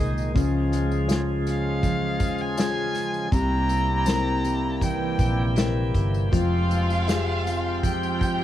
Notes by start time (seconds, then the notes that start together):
Already playing: A#2 D#3 G#3 A#3 D#4 G#4 A#4 D#5
0.00 C2
0.18 tambourine
0.34 C#2 C#3 F3 F4 G#4, kick, closed hi-hat, tambourine
0.72 G#3, closed hi-hat, tambourine
0.91 tambourine
1.08 C#4 F4 G#4, snare, closed hi-hat, tambourine
1.47 C#4, closed hi-hat, tambourine
1.51 F5
1.83 F3, kick, closed hi-hat, tambourine
2.20 D#2 G#4, kick, closed hi-hat, tambourine
2.38 G#5, tambourine
2.58 G#3 C#4 F4 G#4, snare, closed hi-hat, tambourine
2.95 G#4, closed hi-hat, tambourine
3.14 tambourine
3.32 C2 C3 G3 A#3 E4 G4 G5 A#5, kick, closed hi-hat, tambourine
3.69 A#3, closed hi-hat, tambourine
4.06 C4 E4 G4 A#4, snare, closed hi-hat, tambourine
4.45 C4, closed hi-hat, tambourine
4.81 E3 G5, kick, closed hi-hat, tambourine
5.18 A#1 G4, kick, closed hi-hat, tambourine
5.56 A#3 C4 E4 A#4 E5, snare, closed hi-hat, tambourine
5.95 G1 G4, kick, closed hi-hat, tambourine
6.14 tambourine
6.32 F1 F2 F3 G#3 C4 F4 G4 F5, kick, closed hi-hat, tambourine
6.70 G#3, closed hi-hat, tambourine
6.90 tambourine
7.07 F4 G4 G#4, snare, closed hi-hat, tambourine
7.46 C4, closed hi-hat, tambourine
7.83 F3 G4 G5, kick, closed hi-hat, tambourine
8.03 tambourine
8.20 G1 G4, kick, closed hi-hat, tambourine